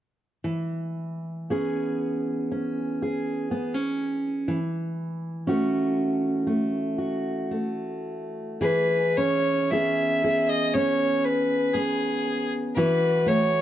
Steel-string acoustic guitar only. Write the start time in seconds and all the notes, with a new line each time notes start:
0.44 E3
1.50 B3 C#4 G#4
2.52 C#4
3.02 G#4
3.51 B3
3.74 C#4
4.48 E3
5.47 A3 C#4 F#4
6.47 A3
6.98 F#4
7.51 A3
8.61 E3 G#4
9.18 C#4
9.72 B3 C#4 G#4
10.24 G#4
10.75 C#4
11.75 B3
12.77 E3 F#4
13.26 A3